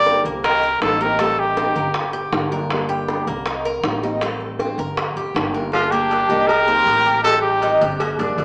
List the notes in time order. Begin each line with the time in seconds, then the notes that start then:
Already playing: G1 D3 G3 A#3 D4 G4 A#4 D5
0.06 high bongo
0.25 C2 A#3, high bongo
0.44 D#4 G4 A#4, muted nylon-string guitar stroke, high bongo
0.63 A#4, high bongo
0.81 A1 D#3 A#3 C4 D#4 G4 A4, high bongo, low bongo
1.00 D#3 A#3 C4 D#4 G4 A#4
1.18 D#3 G3 A3 C4 D#4 G4 A4, high bongo
1.38 D#4 G4, high bongo
1.57 C4, high bongo
1.76 G1 A#4, high bongo
1.94 muted nylon-string guitar stroke, high bongo
2.13 G4, high bongo
2.32 G1 G3 A#3 D4 G4, high bongo, low bongo
2.51 G3 A#3 D4 G4 A#4
2.70 D3 G3 A#3 D4 G4, high bongo
2.89 G4, high bongo
3.08 high bongo
3.27 C2 A#3, high bongo
3.46 D#4, muted nylon-string guitar stroke, high bongo
3.65 A#4, high bongo
3.83 A1 D#3 A#3 C4 G4, high bongo, low bongo
4.03 D#3 A#3 C4 D#4 G4
4.21 D#3 G3 A3 C4 G4, high bongo
4.40 high bongo
4.59 C4, high bongo
4.78 G1 A#4, high bongo
4.97 muted nylon-string guitar stroke, high bongo
5.16 F1 G4, high bongo
5.34 G1 G3 A#3 D4 G4, high bongo, low bongo
5.53 G3 A#3 D4 G4 A#4
5.72 D3 G3 A#3 D4 F4 G4, cowbell
5.91 A#3 D4 G4
6.10 G3 A#3 D4 G4, cowbell
6.29 C2 G3 A#3 D4 D#4 G4
6.47 G4 A#4, muted nylon-string guitar stroke, cowbell
6.67 D#3 A#3 C4 G4 C5
6.86 A1 D#3 A#3 C4 G4, cowbell
7.06 G4
7.23 D#3 G3 C4 D#4 G4 A4, cowbell
7.41 D#4 G4
7.62 D#3 G3 C4 D#4 G4, cowbell
7.81 G1 G3 C4 G4, cowbell
7.99 A#3, muted nylon-string guitar stroke, cowbell
8.18 F1 G3 A#3 D4 G4, cowbell
8.37 G1 G3 A#3 D4 G4, cowbell